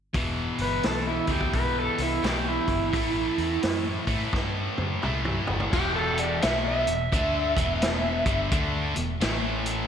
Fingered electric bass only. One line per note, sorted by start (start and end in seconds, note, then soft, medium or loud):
0.15 0.49 E1 medium
0.59 0.79 G1 medium
0.85 1.18 B1 medium
1.28 1.48 D2 medium
1.54 1.88 B1 medium
1.98 2.18 C2 medium
2.23 2.57 B1 medium
2.68 2.94 G1 medium
2.94 3.27 A1 medium
3.38 3.58 E2 medium
3.64 3.97 F#2 medium
4.07 4.27 A2 medium
4.33 4.67 G2 medium
4.78 4.98 F#2 medium
5.03 5.37 C2 medium
5.48 5.67 G1 medium
5.73 6.38 E1 medium
6.44 6.84 B1 medium
6.87 7.11 E1 medium
7.13 7.53 D2 medium
7.57 8.22 E1 loud
8.26 8.50 G1 medium
8.52 8.93 D2 medium
8.96 9.20 E1 medium
9.22 9.87 A1 medium